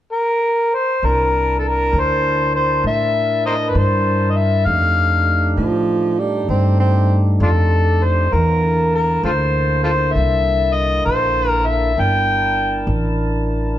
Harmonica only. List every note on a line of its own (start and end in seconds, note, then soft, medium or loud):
0.12 0.76 A#4 medium
0.74 1.07 C5 medium
1.05 1.57 A#4 medium
1.59 1.70 A4 soft
1.69 2.01 A#4 medium
2.00 2.55 C5 medium
2.56 2.83 C5 medium
2.87 3.42 E5 medium
3.46 3.55 A#4 medium
3.46 3.54 C5 medium
3.46 3.71 D#5 medium
3.70 3.79 B4 medium
3.77 4.32 C5 medium
4.31 4.38 D#5 medium
4.37 4.68 E5 medium
4.66 5.58 F5 loud
7.42 7.49 D4 medium
7.42 7.51 F4 medium
7.42 8.05 A4 medium
8.04 8.35 C5 medium
8.33 8.93 A#4 medium
8.95 9.22 A#4 medium
9.25 9.31 F4 medium
9.25 9.31 A4 medium
9.25 9.80 C5 medium
9.84 9.91 F4 medium
9.84 9.91 A4 medium
9.84 10.14 C5 medium
10.13 10.75 E5 medium
10.74 11.05 D#5 medium
11.06 11.49 C5 medium
11.49 11.68 A#4 medium
11.67 12.02 E5 medium
12.00 12.90 G5 medium